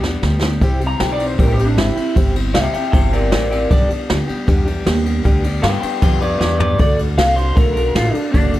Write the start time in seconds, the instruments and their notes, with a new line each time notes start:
Already playing: upright bass E2
0.02 steel-string acoustic guitar G3 B3 D4 G4, snare
0.22 upright bass D2, steel-string acoustic guitar G3 B3 D4 G4, snare
0.41 steel-string acoustic guitar G3 B3 D4 G4, snare
0.61 upright bass C2, steel-string acoustic guitar C3 G3 C4 E4 G4, kick, ride
0.80 steel-string acoustic guitar C4 E4 G4, ride
0.87 clean electric guitar A#5
0.99 upright bass B1, steel-string acoustic guitar G3 C4 E4 G4, clean electric guitar G5, snare, ride
1.12 clean electric guitar D5
1.18 steel-string acoustic guitar C4 E4 G4, ride
1.27 clean electric guitar C5
1.38 upright bass A1, steel-string acoustic guitar C3 G3 C4 E4 G4, clean electric guitar A#4, kick, ride
1.52 clean electric guitar G4
1.59 steel-string acoustic guitar C4 E4, ride
1.65 clean electric guitar D4
1.76 upright bass G#1, steel-string acoustic guitar G3 C4 E4 G4, clean electric guitar E4, snare, ride
1.96 steel-string acoustic guitar C4 E4 G4, muted upright bass stroke, ride
2.15 upright bass G1, steel-string acoustic guitar C3 G3 C4 E4 G4, kick, ride
2.34 steel-string acoustic guitar C4 E4 G4, ride
2.54 upright bass C2, steel-string acoustic guitar G3 C4 E4 G4, clean electric guitar E5 G5, snare, ride
2.73 steel-string acoustic guitar E4 G4, clean electric guitar E5 G5, muted upright bass stroke, ride
2.78 steel-string acoustic guitar C4
2.91 upright bass G1, steel-string acoustic guitar C3 G3 C4 E4, clean electric guitar E5 G5, kick, ride
2.96 steel-string acoustic guitar G4
3.13 steel-string acoustic guitar C4 E4 G4, clean electric guitar A#4 D5, ride
3.31 upright bass A1, steel-string acoustic guitar G3 C4 E4 G4, clean electric guitar A#4 D5, snare, ride
3.51 steel-string acoustic guitar C4 E4 G4, clean electric guitar A#4 D5, ride
3.71 upright bass B1, steel-string acoustic guitar G2 D3 G3 B3 D4 G4, clean electric guitar D5, kick, ride
3.89 steel-string acoustic guitar G3 B3 D4 G4, muted upright bass stroke, ride
4.09 upright bass D2, steel-string acoustic guitar G3 B3 D4 G4, snare, ride
4.28 steel-string acoustic guitar G3 B3 D4 G4, muted upright bass stroke, ride
4.47 upright bass E2, steel-string acoustic guitar G2 D3 G3 B3 D4 G4, kick, ride
4.65 steel-string acoustic guitar G3 B3 D4 G4, ride
4.85 upright bass D#2, steel-string acoustic guitar G3 B3 D4 G4, snare, ride
5.04 steel-string acoustic guitar G3 B3 D4 G4, ride
5.24 upright bass D2, steel-string acoustic guitar G2 D3 G3 B3 D4 G4, kick, ride
5.44 steel-string acoustic guitar G3 B3 D4 G4, ride
5.62 upright bass G2, steel-string acoustic guitar G3 B3 D4, clean electric guitar B4 G5, snare, ride
5.66 steel-string acoustic guitar G4
5.80 steel-string acoustic guitar D4 G4, clean electric guitar B4 G5, muted upright bass stroke, ride
5.84 steel-string acoustic guitar G3 B3
6.01 upright bass F2, steel-string acoustic guitar G2 D3 G3 B3 D4 G4, clean electric guitar B4 G5, kick, ride
6.21 steel-string acoustic guitar G3 B3 D4 G4, clean electric guitar B4 D5, ride
6.39 upright bass E2, steel-string acoustic guitar G3 B3 D4, clean electric guitar B4 D5, snare
6.44 steel-string acoustic guitar G4
6.59 steel-string acoustic guitar G3 B3 D4 G4, clean electric guitar B4 D5, floor tom
6.78 upright bass D2, steel-string acoustic guitar D3 A3 D4 F#4 A4, clean electric guitar D5, kick, ride
6.97 steel-string acoustic guitar D4 F#4 A4, ride
7.17 upright bass C2, steel-string acoustic guitar A3 D4 F#4 A4, clean electric guitar F5, snare, ride
7.36 steel-string acoustic guitar D4 F#4 A4, clean electric guitar C5, ride
7.55 upright bass B1, steel-string acoustic guitar D3 A3 D4 F#4 A4, clean electric guitar A#4, kick, ride
7.73 steel-string acoustic guitar F#4 A4, clean electric guitar A#4, ride
7.79 steel-string acoustic guitar D4
7.95 upright bass A1, steel-string acoustic guitar A3 D4 F#4 A4, clean electric guitar F4, snare, ride
8.12 clean electric guitar D4, steel-string acoustic guitar F#4 A4, muted upright bass stroke, ride
8.17 steel-string acoustic guitar D4
8.31 upright bass F#1, steel-string acoustic guitar D3 A3 D4 F#4 A4, clean electric guitar D4, kick, ride
8.54 steel-string acoustic guitar D4 F#4 A4, ride